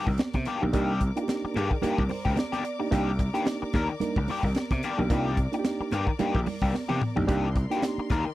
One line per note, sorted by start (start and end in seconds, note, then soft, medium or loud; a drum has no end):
0.00 0.10 D#3 medium
0.00 8.34 A#4 medium
0.00 8.34 D5 medium
0.00 7.25 D6 medium
0.07 0.17 C2 medium
0.07 muted overdriven electric guitar stroke soft
0.07 kick medium
0.18 muted overdriven electric guitar stroke soft
0.18 snare loud
0.18 closed hi-hat medium
0.18 high conga medium
0.33 0.44 C3 loud
0.33 muted overdriven electric guitar stroke soft
0.33 kick medium
0.33 snare soft
0.33 closed hi-hat soft
0.33 high conga medium
0.45 0.65 D#3 medium
0.45 0.63 A#3 loud
0.45 0.62 D4 medium
0.45 0.61 G4 medium
0.45 closed hi-hat medium
0.61 0.74 B1 medium
0.61 0.69 A#3 medium
0.61 0.69 D4 medium
0.61 0.69 D#4 medium
0.61 0.69 G4 medium
0.61 muted overdriven electric guitar stroke soft
0.73 1.10 C2 loud
0.73 0.99 D#3 medium
0.73 0.92 A#3 loud
0.73 1.00 A#3 medium
0.73 0.92 D4 loud
0.73 1.00 D4 medium
0.73 0.92 D#4 loud
0.73 0.92 G4 loud
0.73 1.00 G4 medium
0.73 kick loud
0.73 closed hi-hat medium
1.01 1.08 D#4 soft
1.01 1.08 G4 soft
1.01 kick medium
1.01 closed hi-hat medium
1.01 muted conga soft
1.16 1.58 A#3 medium
1.16 1.59 D4 medium
1.16 1.59 D#4 medium
1.16 1.22 F4 medium
1.16 muted overdriven electric guitar stroke soft
1.16 closed hi-hat medium
1.23 1.62 G4 medium
1.28 snare loud
1.28 closed hi-hat medium
1.28 high conga medium
1.44 muted slap bass stroke soft
1.44 muted overdriven electric guitar stroke soft
1.54 1.69 G2 medium
1.54 1.74 D#3 medium
1.54 1.71 A#3 loud
1.54 1.71 D4 loud
1.54 1.70 G4 medium
1.54 1.81 G#4 medium
1.54 closed hi-hat medium
1.54 muted conga medium
1.71 muted overdriven electric guitar stroke medium
1.71 kick medium
1.82 2.01 D#3 medium
1.82 2.01 A#3 medium
1.82 2.01 D4 medium
1.82 2.01 D4 loud
1.82 2.01 D#4 medium
1.82 2.01 G4 loud
1.82 2.02 G4 medium
1.82 2.08 A#4 medium
1.82 muted slap bass stroke medium
1.82 closed hi-hat medium
1.82 low conga medium
1.98 2.08 C2 medium
1.98 kick medium
2.09 2.17 D#4 soft
2.09 2.17 A#4 soft
2.09 2.35 C5 medium
2.09 muted overdriven electric guitar stroke soft
2.09 open hi-hat medium
2.09 muted conga soft
2.09 low conga medium
2.25 2.36 C#2 medium
2.25 2.36 D#3 soft
2.25 2.37 A#3 medium
2.25 2.37 D4 medium
2.25 2.37 G4 medium
2.25 kick medium
2.37 2.62 D5 medium
2.37 muted overdriven electric guitar stroke soft
2.37 snare loud
2.37 closed hi-hat medium
2.37 high conga medium
2.52 2.62 D#3 medium
2.52 2.63 A#3 medium
2.52 2.63 D4 medium
2.52 2.63 G4 medium
2.52 snare soft
2.52 closed hi-hat medium
2.52 high conga medium
2.63 2.90 D5 medium
2.63 muted overdriven electric guitar stroke soft
2.63 closed hi-hat medium
2.79 2.87 A#3 medium
2.79 2.87 D4 medium
2.79 2.87 D#4 medium
2.79 2.87 G4 medium
2.79 muted overdriven electric guitar stroke soft
2.91 3.28 C2 medium
2.91 3.10 D#3 medium
2.91 3.10 A#3 loud
2.91 3.10 A#3 medium
2.91 3.10 D4 loud
2.91 3.10 D4 medium
2.91 3.10 D#4 medium
2.91 3.11 G4 loud
2.91 3.11 G4 medium
2.91 kick loud
2.91 closed hi-hat loud
3.18 3.26 D#4 soft
3.18 3.26 G4 soft
3.18 muted overdriven electric guitar stroke soft
3.18 kick medium
3.18 closed hi-hat medium
3.18 muted conga soft
3.33 3.45 D#3 medium
3.33 3.76 A#3 medium
3.33 3.46 A#3 medium
3.33 3.76 D4 medium
3.33 3.46 D4 medium
3.33 3.77 D#4 medium
3.33 3.77 G4 medium
3.33 3.46 G4 medium
3.33 closed hi-hat medium
3.46 muted overdriven electric guitar stroke soft
3.46 snare loud
3.46 closed hi-hat loud
3.46 high conga medium
3.62 muted overdriven electric guitar stroke soft
3.62 muted slap bass stroke soft
3.73 3.87 D#2 medium
3.73 3.92 D#3 medium
3.73 3.89 A#3 medium
3.73 3.89 D4 medium
3.73 3.89 A#4 medium
3.73 kick loud
3.73 snare soft
3.73 closed hi-hat medium
3.73 muted conga soft
3.89 muted overdriven electric guitar stroke soft
4.00 4.20 A#3 medium
4.00 4.20 D4 medium
4.00 4.20 D#4 medium
4.00 4.20 A#4 medium
4.00 muted slap bass stroke soft
4.00 closed hi-hat medium
4.00 low conga medium
4.16 4.27 C#2 loud
4.16 muted overdriven electric guitar stroke soft
4.16 kick medium
4.27 4.47 D#3 medium
4.27 4.44 A#3 loud
4.27 4.44 D4 medium
4.27 4.35 D#4 soft
4.27 4.36 G4 soft
4.27 4.43 G4 medium
4.27 open hi-hat medium
4.27 muted conga soft
4.27 low conga medium
4.43 4.54 C2 medium
4.43 muted overdriven electric guitar stroke soft
4.43 kick medium
4.55 muted overdriven electric guitar stroke soft
4.55 snare loud
4.55 closed hi-hat medium
4.55 high conga medium
4.71 4.81 C3 loud
4.71 muted overdriven electric guitar stroke soft
4.71 kick loud
4.71 snare soft
4.71 closed hi-hat medium
4.71 high conga medium
4.83 5.02 D#3 medium
4.83 4.99 A#3 medium
4.83 4.99 D4 loud
4.83 4.98 G4 medium
4.83 closed hi-hat medium
4.98 5.10 B1 medium
4.98 5.06 A#3 medium
4.98 5.06 D4 medium
4.98 5.06 D#4 medium
4.98 5.06 G4 medium
4.98 muted overdriven electric guitar stroke soft
5.10 5.46 C2 loud
5.10 5.36 D#3 medium
5.10 5.29 A#3 loud
5.10 5.36 A#3 medium
5.10 5.29 D4 loud
5.10 5.37 D4 medium
5.10 5.29 D#4 medium
5.10 5.29 F4 loud
5.10 5.37 G4 loud
5.10 kick loud
5.10 closed hi-hat medium
5.37 5.45 D#4 soft
5.37 5.45 G4 soft
5.37 kick loud
5.37 closed hi-hat medium
5.37 muted conga soft
5.52 5.95 A#3 medium
5.52 5.95 D4 medium
5.52 5.95 D#4 medium
5.52 5.59 F4 medium
5.52 muted overdriven electric guitar stroke medium
5.52 closed hi-hat medium
5.59 5.99 G4 loud
5.65 snare loud
5.65 closed hi-hat medium
5.65 high conga medium
5.80 muted slap bass stroke soft
5.80 muted overdriven electric guitar stroke soft
5.91 6.05 G2 medium
5.91 6.11 D#3 loud
5.91 6.07 A#3 loud
5.91 6.06 D4 medium
5.91 6.06 G4 loud
5.91 closed hi-hat medium
5.91 muted conga medium
6.07 muted overdriven electric guitar stroke medium
6.07 kick medium
6.19 6.38 D#3 loud
6.19 6.38 A#3 medium
6.19 6.38 A#3 loud
6.19 6.38 D4 medium
6.19 6.38 D#4 medium
6.19 6.38 G4 loud
6.19 muted slap bass stroke soft
6.19 closed hi-hat medium
6.19 low conga medium
6.35 6.45 A#1 medium
6.35 kick medium
6.46 6.54 D#4 soft
6.46 6.54 A#4 soft
6.46 muted overdriven electric guitar stroke soft
6.46 open hi-hat medium
6.46 muted conga soft
6.46 low conga medium
6.62 6.72 C2 medium
6.62 6.73 D#3 medium
6.62 6.74 A#3 soft
6.62 6.74 D4 medium
6.62 6.74 G4 medium
6.62 kick medium
6.74 muted overdriven electric guitar stroke soft
6.74 snare soft
6.74 high conga medium
6.89 6.99 C3 medium
6.89 7.01 D#3 medium
6.89 7.01 A#3 medium
6.89 7.01 D4 medium
6.89 7.02 G4 medium
6.89 high tom medium
6.89 high conga medium
7.01 muted overdriven electric guitar stroke soft
7.01 mid tom medium
7.16 7.27 B1 medium
7.16 7.24 A#3 medium
7.16 7.24 D4 medium
7.16 7.24 D#4 medium
7.16 7.24 G4 medium
7.16 muted overdriven electric guitar stroke soft
7.16 floor tom medium
7.27 7.65 C2 loud
7.27 7.47 D#3 medium
7.27 7.47 A#3 medium
7.27 7.47 D4 loud
7.27 7.47 D#4 medium
7.27 7.47 G4 loud
7.27 7.47 G4 medium
7.27 8.34 C6 medium
7.27 kick loud
7.27 closed hi-hat loud
7.55 7.63 D#4 soft
7.55 7.63 F4 soft
7.55 muted overdriven electric guitar stroke soft
7.55 kick loud
7.55 closed hi-hat medium
7.55 muted conga soft
7.70 7.82 D#3 medium
7.70 8.13 A#3 medium
7.70 7.83 A#3 medium
7.70 8.13 D4 medium
7.70 7.83 D4 medium
7.70 8.13 D#4 medium
7.70 7.77 F#4 medium
7.70 7.83 G4 medium
7.70 closed hi-hat soft
7.77 8.17 G4 medium
7.82 muted overdriven electric guitar stroke soft
7.82 snare loud
7.82 closed hi-hat loud
7.82 high conga medium
7.98 muted slap bass stroke medium
7.98 muted overdriven electric guitar stroke soft
8.10 8.23 D#2 medium
8.10 8.29 D#3 medium
8.10 8.25 A#3 medium
8.10 8.25 D4 medium
8.10 8.25 A#4 medium
8.10 kick loud
8.10 snare soft
8.10 closed hi-hat medium
8.10 muted conga medium
8.25 muted overdriven electric guitar stroke soft